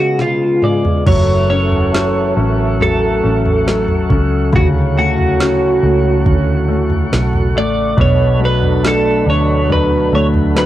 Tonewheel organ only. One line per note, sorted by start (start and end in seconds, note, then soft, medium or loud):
0.00 1.03 C#3 medium
0.00 1.05 G#3 soft
0.00 1.05 B3 soft
0.00 1.04 F4 soft
0.00 1.04 G#4 medium
1.07 10.66 A4 medium
1.07 4.50 E5 medium
1.07 10.66 F#5 medium
1.07 7.94 C#6 medium
7.98 10.66 B5 medium